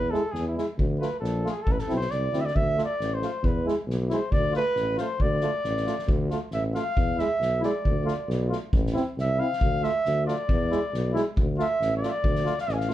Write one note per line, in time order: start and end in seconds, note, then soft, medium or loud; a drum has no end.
0.00 0.13 E2 medium
0.00 0.12 B4 medium
0.10 0.21 G#3 medium
0.10 0.21 E4 medium
0.10 0.33 A4 medium
0.10 snare soft
0.32 0.58 E2 medium
0.32 0.47 G#4 medium
0.32 snare soft
0.48 0.58 E4 medium
0.56 0.65 G#3 medium
0.56 0.65 E4 medium
0.56 snare soft
0.78 1.02 D2 medium
0.78 kick medium
0.99 1.10 A3 medium
0.99 1.09 F4 medium
0.99 1.19 B4 medium
0.99 snare soft
1.20 1.46 A#1 medium
1.20 1.52 A4 medium
1.24 snare soft
1.44 1.53 A3 medium
1.44 1.53 F4 medium
1.44 snare soft
1.50 1.64 G#4 medium
1.62 1.78 A1 medium
1.62 1.73 A4 medium
1.67 kick loud
1.72 1.81 B4 medium
1.78 1.95 A4 medium
1.78 snare soft
1.88 2.09 B1 medium
1.88 1.97 C4 medium
1.88 1.97 E4 medium
1.88 snare soft
1.96 2.12 C5 loud
2.01 snare soft
2.11 2.31 C2 medium
2.11 2.42 D5 medium
2.11 snare soft
2.32 2.53 D2 medium
2.32 2.42 C4 medium
2.32 2.41 E4 medium
2.32 snare soft
2.40 2.47 E5 medium
2.46 2.57 D5 medium
2.46 snare soft
2.55 2.79 D2 medium
2.55 2.84 E5 loud
2.55 kick medium
2.77 2.86 A3 medium
2.77 2.86 F4 soft
2.77 snare soft
2.84 3.16 D5 medium
3.00 3.24 A1 medium
3.00 snare soft
3.14 3.47 C5 medium
3.22 3.30 A3 medium
3.22 3.31 F4 medium
3.22 snare soft
3.42 3.67 E2 medium
3.42 3.67 B4 medium
3.42 kick medium
3.65 3.75 G#3 medium
3.65 3.74 E4 medium
3.65 snare soft
3.87 4.12 B1 loud
3.87 snare soft
4.09 4.20 G#3 medium
4.09 4.18 E4 medium
4.09 4.33 C5 medium
4.09 snare soft
4.32 4.56 D2 medium
4.32 4.54 D5 loud
4.32 kick medium
4.51 4.61 F4 medium
4.51 snare soft
4.56 4.65 A3 medium
4.56 4.96 B4 loud
4.75 5.00 A1 medium
4.75 snare soft
4.97 5.08 A3 medium
4.97 5.06 F4 medium
4.97 5.23 C5 medium
4.97 snare soft
5.20 5.44 D2 medium
5.20 6.31 D5 medium
5.20 kick medium
5.40 5.52 A3 medium
5.40 5.51 F4 medium
5.40 snare soft
5.64 5.88 A1 medium
5.64 snare soft
5.77 snare soft
5.86 5.96 A3 medium
5.86 5.95 F4 medium
5.86 snare soft
5.99 snare soft
6.07 6.32 D2 medium
6.07 kick loud
6.30 6.39 A3 medium
6.30 6.39 F4 medium
6.30 snare soft
6.51 6.76 A1 medium
6.51 6.63 E5 medium
6.51 snare soft
6.74 6.83 A3 medium
6.74 6.83 F4 medium
6.74 7.21 F5 loud
6.74 snare soft
6.96 7.21 E2 medium
6.96 kick loud
7.17 7.28 G#3 medium
7.17 7.26 E4 medium
7.17 7.63 E5 loud
7.17 snare soft
7.40 7.64 B1 medium
7.40 snare soft
7.60 7.72 G#3 medium
7.60 7.69 E4 medium
7.60 8.69 D5 medium
7.60 snare soft
7.85 8.09 D2 medium
7.85 kick medium
8.05 8.14 A3 medium
8.05 8.14 F4 medium
8.05 snare soft
8.28 8.52 B1 medium
8.28 snare soft
8.49 8.59 A3 medium
8.49 8.58 F4 medium
8.49 snare soft
8.73 8.97 A1 medium
8.73 kick loud
8.86 snare soft
8.93 9.04 C4 medium
8.93 9.02 E4 medium
8.93 snare soft
9.17 9.41 C2 medium
9.17 9.41 E5 loud
9.17 snare soft
9.38 9.49 C4 medium
9.38 9.47 E4 medium
9.38 9.85 F5 loud
9.53 snare soft
9.61 9.85 D2 medium
9.61 kick loud
9.83 9.92 A3 medium
9.83 9.91 F4 medium
9.83 10.26 E5 loud
9.83 snare soft
10.05 10.30 D2 medium
10.05 snare soft
10.26 10.36 A3 medium
10.26 10.35 F4 medium
10.26 11.32 D5 medium
10.26 snare soft
10.49 10.73 E2 medium
10.49 kick loud
10.70 10.80 G#3 medium
10.70 10.79 E4 medium
10.70 snare soft
10.93 11.16 B1 medium
10.93 snare soft
11.13 11.23 G#3 medium
11.13 11.22 E4 medium
11.13 snare soft
11.37 11.61 D2 medium
11.37 kick loud
11.58 11.67 A3 medium
11.58 11.67 F4 medium
11.58 11.96 E5 loud
11.58 snare soft
11.81 12.04 A1 medium
11.81 snare soft
11.97 12.09 D5 medium
12.03 12.11 A3 medium
12.03 12.11 F4 medium
12.03 snare soft
12.08 12.60 D5 loud
12.08 12.11 E5 medium
12.23 12.47 D2 medium
12.23 kick loud
12.35 snare soft
12.44 12.53 A3 medium
12.44 12.54 F4 medium
12.44 snare soft
12.58 12.75 F5 medium
12.58 snare soft
12.67 12.91 A1 medium
12.67 snare soft
12.73 12.94 F5 medium
12.73 12.78 G#5 medium
12.80 snare soft
12.88 12.94 A3 medium
12.88 12.94 F4 medium
12.88 snare soft